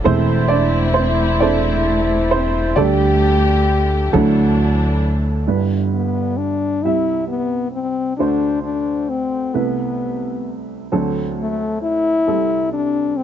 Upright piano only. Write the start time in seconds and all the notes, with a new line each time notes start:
0.04 E2 E3 A3 C4 E4 C5
0.48 D4 D5
0.94 C4 C5
1.40 A3 C4 D4 E4 A4 C5 D5
2.31 C4 C5
2.76 D2 D3 G3 A3 D4 G4 A4 D5
4.13 D2 D3 F#3 D4 E4 A4
5.47 G1 G2 G3 D4 E4 B4
6.84 C2 C3 G3 E4 E5
8.19 D2 D3 A3 D4 F#4 C5
9.54 C2 C3 A3 B3 E4 B4
10.92 D2 D3 F#3 C4 D4 A4
12.27 C2 C3 G3 C4 E4 A4